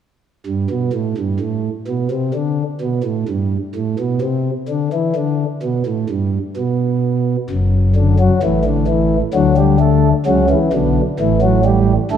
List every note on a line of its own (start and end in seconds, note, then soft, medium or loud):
0.46 0.67 G2 medium
0.70 0.91 B2 medium
0.93 1.14 A2 medium
1.17 1.38 G2 medium
1.40 1.69 A2 medium
1.88 2.08 B2 medium
2.11 2.31 C3 medium
2.34 2.63 D3 medium
2.81 3.01 B2 medium
3.04 3.24 A2 medium
3.28 3.57 G2 medium
3.75 3.95 A2 medium
3.99 4.19 B2 medium
4.21 4.51 C3 medium
4.69 4.89 D3 medium
4.93 5.13 E3 medium
5.16 5.45 D3 medium
5.63 5.83 B2 medium
5.86 6.06 A2 medium
6.09 6.38 G2 medium
6.57 7.36 B2 medium
7.50 8.29 F#1 medium
7.50 8.29 F#2 medium
7.96 8.16 D3 medium
8.20 8.39 F#3 medium
8.43 9.22 A1 medium
8.43 9.22 A2 medium
8.43 8.62 E3 medium
8.65 8.85 D3 medium
8.88 9.16 E3 medium
9.34 10.13 D2 medium
9.34 10.13 D3 medium
9.34 9.54 F#3 medium
9.58 9.77 G3 medium
9.80 10.08 A3 medium
10.26 10.55 C#2 medium
10.26 10.55 C#3 medium
10.26 10.46 F#3 medium
10.50 10.69 E3 medium
10.73 11.01 B1 medium
10.73 11.01 B2 medium
10.73 11.01 D3 medium
11.20 11.98 A1 medium
11.20 11.98 A2 medium
11.20 11.39 E3 medium
11.42 11.61 F#3 medium
11.65 11.93 G3 medium
12.11 12.17 G1 medium
12.11 12.17 G2 medium
12.11 12.17 A3 medium